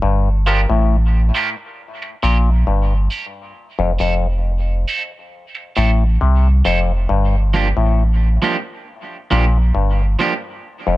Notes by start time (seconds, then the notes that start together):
0.02 G1 G2
0.46 F3 A#3 D4 F4 G4 A#4
0.70 A1 A2
1.35 F3 A#3 D4 F4 G4 A#4
2.02 muted clean electric guitar stroke
2.23 A#1 A#2 F3 A#3 D4 F4 G4 A#4
2.67 G1 G2
3.10 F3 A#3 D4 F4 G4 A#4
3.79 F1 F2
3.99 F1 F2 A3 C4 E4 A4
4.88 A3 C4 E4 A4
5.55 muted clean electric guitar stroke
5.76 A1 A2 A3 C4 E4 A4
6.21 C2 C3
6.65 F1 F2 A3 C4 E4 A4
7.09 G1 G2
7.54 F3 A#3 D4 G4
7.77 A1 A2
8.42 F3 A#3 D4 G4
9.31 A#1 A#2 F3 A#3 D4 G4
9.75 G1 G2
10.19 F3 A#3 D4 G4
10.87 F1 F2